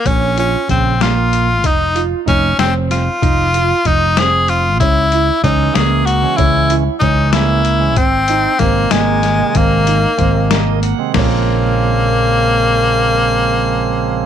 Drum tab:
CC |-----|-----|-----|-----|
HH |xxxxx|xxxxx|xxxxx|xxxxx|
SD |---o-|---oo|---o-|---o-|
BD |o-o--|o-o--|o-o--|o-o--|

CC |-----|-----|-----|x----|
HH |xxxxx|xxxxx|xxxxx|-----|
SD |---o-|--ooo|---o-|o----|
BD |o-o--|o-o--|o-o--|o----|

CC |-----|
HH |-----|
SD |-----|
BD |-----|